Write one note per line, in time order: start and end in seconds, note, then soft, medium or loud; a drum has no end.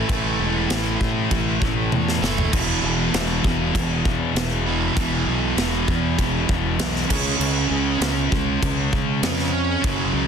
0.00 0.10 E3 medium
0.09 0.36 A1 medium
0.09 2.21 A2 loud
0.09 2.23 E3 loud
0.09 2.21 A3 medium
0.09 kick loud
0.09 crash medium
0.39 0.66 E1 medium
0.70 0.96 A1 medium
0.70 snare loud
0.70 crash medium
1.01 1.27 A2 medium
1.01 kick medium
1.31 1.58 A1 medium
1.31 kick medium
1.31 crash medium
1.62 1.88 A1 medium
1.62 kick medium
1.92 2.19 E2 medium
1.92 high tom medium
2.08 snare medium
2.22 2.49 F#1 loud
2.22 2.52 A2 medium
2.22 2.55 E3 medium
2.22 2.51 A3 medium
2.22 snare medium
2.38 floor tom medium
2.53 2.80 E1 medium
2.53 4.64 E2 medium
2.53 4.65 B2 loud
2.53 4.65 E3 loud
2.53 kick loud
2.53 crash loud
2.83 3.10 E1 medium
3.13 3.40 E1 medium
3.13 snare loud
3.13 crash medium
3.44 3.71 E1 medium
3.44 kick medium
3.75 4.02 E1 medium
3.75 kick medium
3.75 crash medium
4.05 4.32 E2 medium
4.05 kick medium
4.35 4.88 E1 loud
4.35 snare loud
4.35 crash medium
4.66 4.95 E2 medium
4.66 4.95 B2 medium
4.66 4.95 E3 medium
4.96 5.23 E1 medium
4.96 7.08 E2 medium
4.96 7.08 B2 loud
4.96 7.09 E3 loud
4.96 kick loud
4.96 crash medium
5.26 5.53 B1 medium
5.57 5.84 E1 medium
5.57 snare loud
5.57 crash medium
5.88 6.15 E2 loud
5.88 kick medium
6.18 6.45 E1 medium
6.18 kick medium
6.18 crash medium
6.49 6.76 E1 medium
6.49 kick loud
6.78 7.05 B1 loud
6.78 snare loud
6.78 crash medium
6.96 snare soft
7.10 7.36 C#2 medium
7.10 9.21 C#3 medium
7.10 9.22 G#3 medium
7.10 9.25 C#4 medium
7.10 kick loud
7.10 crash loud
7.39 7.66 C#2 medium
7.39 crash medium
7.71 7.97 C#2 loud
8.01 8.27 C#2 medium
8.01 snare loud
8.01 crash medium
8.32 8.58 C#2 medium
8.32 kick medium
8.63 8.89 C#2 loud
8.63 kick medium
8.63 crash medium
8.93 9.19 C#3 medium
8.93 kick loud
9.22 9.75 F2 medium
9.22 9.51 C#3 medium
9.22 9.52 G#3 medium
9.22 10.27 C#4 loud
9.22 snare loud
9.22 crash medium
9.39 snare soft
9.84 10.10 F#1 medium
9.84 10.27 F#2 loud
9.84 10.27 C#3 loud
9.84 10.27 F#3 loud
9.84 kick loud
9.84 crash medium
10.13 10.27 C#2 medium